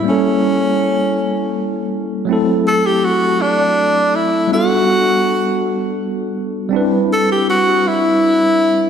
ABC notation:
X:1
M:6/8
L:1/16
Q:3/8=54
K:Ador
V:1 name="Tenor saxophone"
^C8- C2 z2 | z2 A G F2 D4 E2 | F8 z4 | z2 A G F2 E6 |]
V:2 name="Tine electric piano"
[G,_B,^CEA]12 | [F,A,CEA]12 | [G,B,DFA]12 | [G,CDEB]12 |]